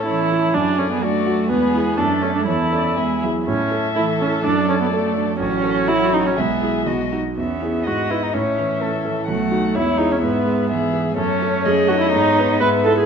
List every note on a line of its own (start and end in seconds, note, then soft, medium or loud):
0.00 0.52 A2 soft
0.00 0.21 A4 soft
0.00 0.50 A4 soft
0.06 0.51 E3 soft
0.06 0.45 C#4 soft
0.06 0.56 E4 medium
0.06 0.56 C#5 soft
0.31 0.54 E4 soft
0.53 1.47 F#2 soft
0.53 1.01 F#3 medium
0.53 0.80 D4 medium
0.53 1.03 G#4 soft
0.53 1.02 D5 soft
0.78 0.90 C#4 medium
0.78 1.16 A4 soft
0.91 1.04 B3 medium
1.02 1.48 F#3 medium
1.02 1.50 A3 medium
1.02 1.40 D4 soft
1.02 1.49 F#4 medium
1.02 1.49 D5 soft
1.27 1.50 F#4 soft
1.49 1.96 E2 soft
1.49 1.96 G#3 medium
1.49 1.99 B3 medium
1.49 1.99 G#4 soft
1.49 1.94 B4 soft
1.74 1.96 E4 soft
1.74 1.96 G#4 soft
1.97 2.46 F#2 soft
1.97 2.48 A3 medium
1.97 2.23 D4 medium
1.97 2.46 A4 soft
1.97 2.47 A4 soft
2.22 2.34 C#4 medium
2.22 2.45 D4 soft
2.22 2.45 A4 soft
2.35 2.46 D4 medium
2.46 2.95 E2 soft
2.46 2.91 E3 soft
2.46 3.20 E4 medium
2.46 2.98 A4 soft
2.46 2.55 C#5 soft
2.72 2.95 C#4 soft
2.72 2.95 A4 soft
2.72 2.99 D5 soft
2.96 3.45 E2 soft
2.96 3.24 G#3 soft
2.96 3.26 G#4 soft
2.96 3.27 E5 soft
3.22 3.47 F#3 soft
3.22 3.45 E4 soft
3.22 3.45 G#4 soft
3.46 4.42 A2 soft
3.46 3.93 C#4 medium
3.46 5.37 A4 soft
3.46 4.46 E5 soft
3.72 4.11 A4 soft
3.96 4.42 E3 soft
3.96 4.35 A3 soft
3.96 4.04 E4 medium
4.20 4.44 C#4 medium
4.20 4.45 E4 soft
4.44 5.38 F#2 soft
4.44 5.38 F#3 soft
4.44 4.68 D4 medium
4.44 5.39 D5 soft
4.69 4.74 C#4 medium
4.69 5.07 A4 soft
4.81 4.92 B3 medium
4.93 5.31 A3 soft
4.93 5.39 A3 medium
5.16 5.40 D4 soft
5.39 6.34 A1 soft
5.39 6.35 F#3 medium
5.39 5.89 C#4 medium
5.39 6.37 F#4 medium
5.39 6.39 C#5 medium
5.64 6.03 A4 soft
5.88 6.27 F#3 soft
5.88 6.15 E4 medium
6.12 6.37 C#4 soft
6.12 6.28 D#4 medium
6.26 6.41 C#4 medium
6.36 6.85 B1 soft
6.36 7.10 G#3 soft
6.36 6.88 B3 medium
6.36 6.85 G#4 soft
6.36 6.88 E5 soft
6.61 6.84 E4 soft
6.61 6.84 G#4 soft
6.86 7.35 B1 soft
6.86 7.15 F#4 soft
6.86 7.16 D#5 soft
7.12 7.35 D#4 soft
7.12 7.35 F#4 soft
7.37 7.84 E2 soft
7.37 7.88 B3 soft
7.37 7.86 C#4 soft
7.37 7.85 E5 soft
7.62 7.84 E4 soft
7.62 7.84 G#4 soft
7.84 8.33 G#2 soft
7.84 8.36 B3 soft
7.84 8.12 F#4 medium
7.84 8.34 D#5 soft
7.84 8.35 D#5 soft
8.10 8.32 D#4 soft
8.10 8.24 E4 soft
8.10 8.32 B4 soft
8.23 8.35 D#4 soft
8.33 9.26 A2 soft
8.33 8.81 A3 soft
8.33 9.05 C#4 medium
8.33 8.83 C#5 soft
8.33 9.26 E5 soft
8.59 8.96 E3 soft
8.82 8.90 A3 soft
8.82 9.19 C#4 soft
8.82 9.29 A4 soft
9.05 9.31 E3 soft
9.05 9.29 A4 soft
9.26 9.74 B1 soft
9.26 9.77 F#3 soft
9.26 9.77 A3 medium
9.26 9.76 F#4 soft
9.26 9.76 F#5 soft
9.52 9.73 D#4 soft
9.52 9.73 F#4 soft
9.75 10.21 E2 soft
9.75 10.21 G#3 soft
9.75 9.99 E4 medium
9.75 10.25 C#5 soft
9.75 10.69 E5 soft
9.97 10.13 D#4 medium
9.97 10.20 E4 soft
9.97 10.20 G#4 soft
10.12 10.21 C#4 medium
10.22 11.15 G#2 soft
10.22 10.72 G#3 soft
10.22 10.92 B3 medium
10.22 10.69 B4 soft
10.45 10.84 G#3 soft
10.69 11.16 E3 soft
10.69 11.08 B3 soft
10.69 11.16 G#4 medium
10.69 11.17 E5 soft
10.93 11.17 G#4 soft
11.16 11.64 F#2 medium
11.16 12.14 A3 soft
11.16 11.67 C#4 medium
11.16 11.64 A4 medium
11.16 11.67 C#5 soft
11.42 11.63 C#4 soft
11.42 11.63 A4 soft
11.64 12.12 F#2 medium
11.64 11.90 G#4 medium
11.64 12.62 C#5 medium
11.64 12.63 D#5 medium
11.88 12.11 D#4 soft
11.88 12.00 F#4 medium
11.88 12.11 A4 soft
12.00 12.11 E4 medium
12.12 12.60 G#2 medium
12.12 13.06 B3 soft
12.12 12.60 D#4 medium
12.39 12.60 D#4 soft
12.39 12.60 B4 soft
12.60 13.06 G#2 medium
12.60 12.68 B4 medium
12.60 13.06 B4 medium
12.60 13.06 E5 medium
12.84 13.06 E4 soft
12.84 12.96 A4 medium
12.84 13.06 B4 soft
12.97 13.06 G#4 medium